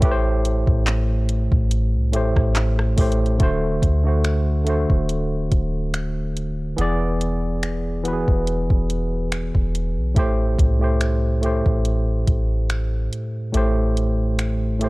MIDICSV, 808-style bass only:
0, 0, Header, 1, 2, 480
1, 0, Start_track
1, 0, Tempo, 845070
1, 12, Time_signature, 4, 2, 24, 8
1, 8458, End_track
2, 0, Start_track
2, 0, Title_t, "808-style bass"
2, 0, Program_c, 0, 38
2, 13, Note_on_c, 0, 33, 107
2, 368, Note_off_c, 0, 33, 0
2, 383, Note_on_c, 0, 33, 102
2, 843, Note_off_c, 0, 33, 0
2, 862, Note_on_c, 0, 33, 106
2, 1102, Note_on_c, 0, 36, 100
2, 1111, Note_off_c, 0, 33, 0
2, 1213, Note_on_c, 0, 33, 101
2, 1222, Note_off_c, 0, 36, 0
2, 1336, Note_off_c, 0, 33, 0
2, 1342, Note_on_c, 0, 33, 103
2, 1679, Note_off_c, 0, 33, 0
2, 1693, Note_on_c, 0, 33, 102
2, 1923, Note_off_c, 0, 33, 0
2, 2173, Note_on_c, 0, 38, 103
2, 2760, Note_off_c, 0, 38, 0
2, 2782, Note_on_c, 0, 26, 95
2, 3119, Note_off_c, 0, 26, 0
2, 3133, Note_on_c, 0, 26, 94
2, 3830, Note_off_c, 0, 26, 0
2, 3853, Note_on_c, 0, 28, 106
2, 4680, Note_off_c, 0, 28, 0
2, 4702, Note_on_c, 0, 28, 101
2, 4933, Note_off_c, 0, 28, 0
2, 4943, Note_on_c, 0, 28, 96
2, 5403, Note_off_c, 0, 28, 0
2, 5423, Note_on_c, 0, 28, 113
2, 5663, Note_on_c, 0, 35, 99
2, 5672, Note_off_c, 0, 28, 0
2, 5768, Note_off_c, 0, 35, 0
2, 5774, Note_on_c, 0, 33, 102
2, 6004, Note_off_c, 0, 33, 0
2, 6013, Note_on_c, 0, 36, 103
2, 6600, Note_off_c, 0, 36, 0
2, 6623, Note_on_c, 0, 33, 94
2, 6959, Note_off_c, 0, 33, 0
2, 6973, Note_on_c, 0, 33, 94
2, 7434, Note_off_c, 0, 33, 0
2, 7693, Note_on_c, 0, 33, 109
2, 8458, Note_off_c, 0, 33, 0
2, 8458, End_track
0, 0, End_of_file